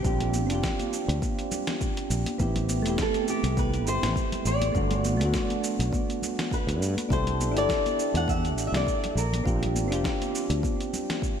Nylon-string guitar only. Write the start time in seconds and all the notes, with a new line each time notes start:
Already playing: G4
3.02 A4
3.30 G4
3.59 B4
3.88 C5
4.47 D5
6.54 B4
7.13 C5
7.58 D5
8.17 F#5
8.29 E5
8.67 E5
8.76 D5
9.18 A#4